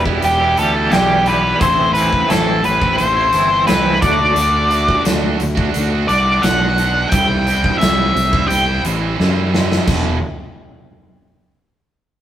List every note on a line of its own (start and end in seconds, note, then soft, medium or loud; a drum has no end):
0.00 0.18 E1 medium
0.00 0.37 G4 medium
0.06 0.40 E3 soft
0.06 0.43 G3 medium
0.06 0.41 B3 medium
0.06 0.39 E4 medium
0.06 kick medium
0.22 0.53 E1 medium
0.22 0.56 G4 medium
0.22 closed hi-hat medium
0.38 0.54 E3 medium
0.38 0.57 B3 medium
0.38 0.58 E4 medium
0.38 0.57 G4 medium
0.44 0.57 G3 soft
0.57 0.88 D2 medium
0.57 0.91 E3 medium
0.57 0.75 G3 medium
0.57 0.73 B3 medium
0.57 0.72 E4 medium
0.57 0.71 G4 medium
0.57 0.92 A4 medium
0.57 closed hi-hat medium
0.72 0.90 E3 medium
0.72 0.92 G3 medium
0.72 0.92 B3 medium
0.72 0.94 E4 medium
0.72 0.91 G4 medium
0.90 1.52 B1 medium
0.90 1.58 E2 loud
0.90 1.58 B2 medium
0.90 1.24 E3 medium
0.90 1.10 G3 medium
0.90 1.09 B3 medium
0.90 1.25 G4 medium
0.90 1.28 G4 medium
0.90 snare loud
0.90 closed hi-hat medium
0.95 1.08 E4 medium
1.09 1.25 G3 medium
1.09 1.26 B3 medium
1.09 1.27 E4 medium
1.25 1.58 E3 medium
1.25 1.58 G3 medium
1.25 1.59 B3 medium
1.25 1.59 E4 medium
1.25 1.40 G4 medium
1.25 1.61 B4 medium
1.25 closed hi-hat medium
1.41 1.59 G3 medium
1.41 1.58 E4 medium
1.41 1.58 G4 medium
1.61 2.21 A1 medium
1.61 2.27 A2 medium
1.61 1.92 E3 medium
1.61 1.94 A3 loud
1.61 1.94 C4 loud
1.61 1.95 E4 loud
1.61 1.93 C5 medium
1.61 kick loud
1.61 closed hi-hat medium
1.93 2.28 E3 medium
1.93 2.29 A3 medium
1.93 2.29 C4 medium
1.93 2.30 E4 medium
1.93 2.30 B4 medium
1.93 closed hi-hat medium
2.11 2.28 C4 medium
2.11 2.30 E4 medium
2.11 kick medium
2.28 2.61 A1 medium
2.28 2.81 A2 medium
2.28 2.62 E3 medium
2.28 2.48 A3 medium
2.28 2.46 C4 loud
2.28 2.44 E4 loud
2.28 2.62 A4 medium
2.28 snare loud
2.28 closed hi-hat medium
2.46 2.63 A3 medium
2.46 2.63 C4 medium
2.46 2.63 E4 medium
2.63 2.95 A1 medium
2.63 2.97 B4 medium
2.63 muted distorted electric guitar stroke soft
2.63 closed hi-hat medium
2.81 3.18 A3 medium
2.81 3.16 C4 medium
2.81 3.15 E4 medium
2.81 kick medium
2.98 3.29 A1 loud
2.98 3.63 C5 medium
2.98 closed hi-hat medium
3.16 3.33 A3 soft
3.16 3.33 C4 medium
3.16 3.33 E4 medium
3.32 3.63 G1 medium
3.32 3.66 E3 medium
3.32 3.52 A3 medium
3.32 3.50 C4 medium
3.32 3.48 E4 medium
3.32 closed hi-hat medium
3.50 3.68 A3 medium
3.50 3.67 C4 medium
3.50 3.68 E4 medium
3.67 3.98 C2 medium
3.67 4.00 A2 medium
3.67 4.00 E3 medium
3.67 3.86 A3 medium
3.67 3.84 C4 medium
3.67 3.82 E4 medium
3.67 3.99 B4 medium
3.67 snare loud
3.67 closed hi-hat medium
3.83 4.02 A3 medium
3.83 4.00 C4 medium
3.83 3.99 E4 medium
4.01 4.32 D2 medium
4.01 4.34 D3 loud
4.01 4.34 F#3 medium
4.01 4.36 A3 medium
4.01 4.36 D4 loud
4.01 4.37 F#4 loud
4.01 5.01 D5 medium
4.01 kick loud
4.01 closed hi-hat medium
4.18 4.36 A3 medium
4.18 4.35 D4 medium
4.18 4.34 F#4 medium
4.35 4.97 D2 loud
4.35 4.68 D3 medium
4.35 4.70 A3 medium
4.35 4.69 D4 loud
4.35 4.71 F#4 loud
4.35 closed hi-hat loud
4.69 5.03 D3 medium
4.69 5.05 A3 medium
4.69 5.05 D4 medium
4.69 5.06 F#4 medium
4.69 closed hi-hat medium
4.88 kick medium
5.04 5.36 D2 medium
5.04 5.39 D3 medium
5.04 5.24 A3 loud
5.04 5.23 D4 loud
5.04 5.21 F#4 loud
5.04 snare loud
5.04 closed hi-hat loud
5.22 5.41 A3 medium
5.22 5.39 D4 medium
5.22 5.40 F#4 medium
5.40 5.70 D2 medium
5.40 muted distorted electric guitar stroke soft
5.40 closed hi-hat medium
5.55 5.92 A3 medium
5.55 5.91 D4 medium
5.55 5.89 F#4 medium
5.55 kick medium
5.74 6.05 D2 medium
5.74 closed hi-hat medium
5.91 6.07 A3 soft
5.91 6.08 D4 medium
5.91 6.09 F#4 medium
6.07 6.39 C2 medium
6.07 6.41 D3 medium
6.07 6.26 A3 medium
6.07 6.24 D4 medium
6.07 6.23 F#4 medium
6.07 6.44 D5 medium
6.07 closed hi-hat medium
6.25 6.42 A3 medium
6.25 6.43 D4 medium
6.25 6.43 F#4 medium
6.42 7.04 B1 medium
6.42 6.76 D3 medium
6.42 6.60 A3 medium
6.42 6.59 D4 loud
6.42 6.57 F#4 medium
6.42 7.09 F#5 loud
6.42 snare loud
6.42 closed hi-hat medium
6.59 6.77 A3 medium
6.59 6.78 D4 medium
6.59 6.79 F#4 medium
6.77 7.10 D3 medium
6.77 7.10 A3 medium
6.77 7.11 D4 medium
6.77 7.11 F#4 medium
6.77 closed hi-hat medium
7.10 7.72 C2 medium
7.10 7.78 C3 medium
7.10 7.44 E3 loud
7.10 7.45 G3 loud
7.10 7.46 C4 loud
7.10 7.47 E4 loud
7.10 7.76 G5 loud
7.10 kick loud
7.10 closed hi-hat medium
7.45 7.79 E3 medium
7.45 7.80 G3 medium
7.45 7.80 C4 medium
7.45 7.81 E4 medium
7.45 closed hi-hat medium
7.64 kick medium
7.78 8.11 C2 medium
7.78 8.32 C3 medium
7.78 8.13 E3 medium
7.78 7.99 G3 loud
7.78 7.98 C4 medium
7.78 7.97 E4 medium
7.78 8.47 E5 medium
7.78 closed hi-hat medium
7.83 snare loud
7.98 8.14 G3 medium
7.98 8.14 C4 medium
7.98 8.15 E4 medium
8.15 8.46 C2 loud
8.15 muted distorted electric guitar stroke soft
8.15 closed hi-hat medium
8.32 8.68 G3 medium
8.32 8.66 C4 medium
8.32 8.65 E4 medium
8.32 kick medium
8.48 8.80 C2 medium
8.48 8.81 G5 medium
8.48 closed hi-hat medium
8.67 8.83 G3 medium
8.67 8.84 C4 medium
8.67 8.84 E4 medium
8.83 9.15 A1 medium
8.83 9.17 E3 medium
8.83 9.01 G3 medium
8.83 9.00 C4 medium
8.83 8.99 E4 medium
8.83 closed hi-hat medium
9.00 9.18 G3 medium
9.00 9.18 C4 medium
9.00 9.19 E4 medium
9.17 9.79 F#2 loud
9.17 9.70 C3 medium
9.17 9.50 E3 medium
9.17 9.35 G3 medium
9.17 9.34 C4 medium
9.17 9.33 E4 loud
9.17 snare medium
9.34 9.51 G3 medium
9.34 9.51 C4 medium
9.34 9.53 E4 medium
9.51 9.84 E3 medium
9.51 9.85 G3 medium
9.51 9.85 C4 medium
9.51 9.86 E4 medium
9.51 snare medium
9.72 snare medium
9.86 10.20 E1 medium
9.86 10.14 E2 loud
9.86 10.15 B2 medium
9.86 10.15 E3 loud
9.86 kick loud
9.86 crash medium